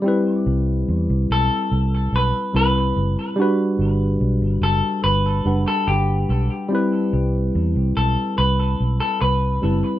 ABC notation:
X:1
M:4/4
L:1/16
Q:1/4=72
K:Clyd
V:1 name="Clean electric guitar"
z6 A4 B2 B3 z | z6 A2 B3 A G3 z | z6 A2 B3 A B4 |]
V:2 name="Tine electric piano"
[G,CEB]12 [G,CEB]4 | [G,DFB]8- [G,DFB]2 [G,DBf]6 | [G,CEB]12- [G,CEB]2 [G,CEB]2 |]
V:3 name="Fingered electric bass" clef=bass
z2 C,,2 E,, C,, B,,, z C,,2 B,,, z C,,2 F,,, z | z2 G,,,2 B,,, G,,, F,,, z G,,,2 F,,, z G,,,2 B,,, z | z2 C,,2 E,, C,, B,,, z C,,2 B,,, z C,,2 F,,, z |]